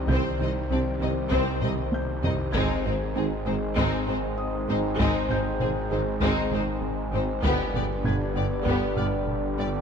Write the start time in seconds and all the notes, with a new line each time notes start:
Already playing: C2 D#3 G3 C4 G4 C5
0.08 C2 C3 C4 G6, taiko
0.13 C5
0.40 C2 C3 D#3 C4 D#4 D#5
0.70 C2 C3 G3 C4 D4 D5
1.00 C2 C3 C4 D#4 D#5
1.31 C2 C3 C4 C5, taiko
1.62 C2 C3 C4 D#4 D#5, taiko low-mid
1.93 G6, taiko high
2.23 C2 C3 D#3 C4 D#4 D#5, taiko low
2.52 G#1 G#2 D#3 G#3 C4 D#4 G#4 C5 G#6, taiko
2.84 G#1 G#2 C4 D#4 C5
3.15 G#1 G#2 C4 D#4 G#4
3.46 G#1 G#2 C4 D#4 G#4 C5
3.76 G#1 G#2 G#3 C4 D#4, taiko
4.07 G#1 G#2 C4 D#4 G#4 C5
4.38 D#6
4.68 G#1 G#2 C4 D#4 C5
4.98 G#1 G#2 G#3 C4 D#4, taiko
5.29 G#1 G#2 C4 D#4 C5 G6, taiko low-mid
5.60 G#1 G#2 C4 D#4 G#4, taiko low-mid
5.90 G#1 G#2 C4 D#4 G#4 C5
6.20 G#1 G#2 G#3 C4 D#4, taiko
6.51 G#1 G#2 C4 D#4 G#4 C5, taiko low-mid
6.81 taiko low-mid
7.13 G#1 G#2 C4 D#4 C5
7.43 G1 G2 D3 G3 B3 D4 G4 B4 D5, taiko
7.74 G1 G2 B3 G4 D5, taiko low-mid
8.04 G1 G2 G3 B3 D4 B4 G#6, taiko low-mid
8.35 G1 G2 B3 G4 D5
8.65 G1 G2 G3 B3 G4, taiko
8.96 G1 G2 B3 G4 D5 F6, taiko low-mid
9.27 taiko low-mid
9.58 G1 G2 B3 G4 D5